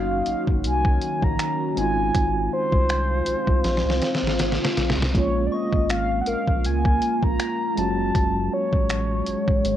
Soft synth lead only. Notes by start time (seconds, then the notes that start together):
Already playing: F5
0.28 F5
0.66 G#5
1.24 A#5
1.78 G#5
2.53 C5
5.16 C#5
5.47 D5
5.53 D#5
5.91 F5
6.21 F#5
6.29 F5
6.66 G#5
7.24 A#5
7.79 A5
8.53 C#5